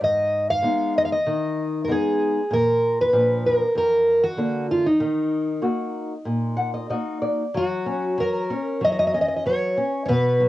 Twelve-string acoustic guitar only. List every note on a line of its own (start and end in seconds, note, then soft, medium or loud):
0.04 0.50 D#5 medium
0.50 0.98 F5 medium
0.98 1.03 D#5 medium
1.05 1.11 F5 medium
1.12 1.84 D#5 medium
1.85 1.90 A#4 medium
1.91 2.54 G#4 medium
2.53 3.00 A#4 medium
3.01 3.43 B4 medium
3.46 3.74 A#4 medium
3.78 4.24 A#4 medium
4.23 4.66 F#4 medium
4.71 4.85 F4 medium
4.86 6.87 D#4 medium
7.57 8.22 F#4 medium
8.20 8.84 A#4 medium
8.85 8.91 D#5 medium
8.92 8.98 D#5 medium
8.99 9.06 D#5 medium
9.07 9.13 D#5 medium
9.14 9.20 D#5 medium
9.21 9.27 D#5 medium
9.28 9.35 D#5 medium
9.37 9.44 D#5 medium
9.46 10.05 C#5 medium
10.06 10.49 B4 medium
10.06 10.08 C#5 medium